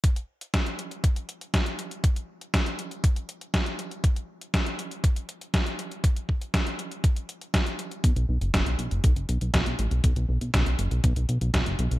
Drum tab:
HH |xx-xxxxxxxxxxxxx|xx-xxxxxxxxxxxxx|xx-xxxxxxxxxxxxx|xx-xxxxxxxxxxxxx|
SD |----o-------o---|----o-------o---|----o-------o---|----o-------o---|
BD |o---o---o---o---|o---o---o---o---|o---o---o---o---|o-o-o---o---o---|

HH |xx-xxxxxxxxxxxxx|xx-xxxxxxxxxxxxx|
SD |----o-------o---|----o-------o---|
BD |o---o---o---o---|o---o---o---o---|